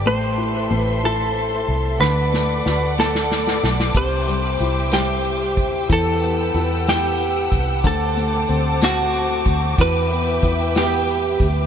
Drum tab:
HH |------------|------------|x-x-x-x-x-x-|x-x-x-x-x-x-|
SD |------------|o-o-o-oooooo|------o-----|------o-----|
BD |------------|------------|o---------o-|o---------o-|

HH |x-x-x-x-x-x-|x-x-x-x-x-x-|
SD |------o-----|------o-----|
BD |o---------o-|o---o-----o-|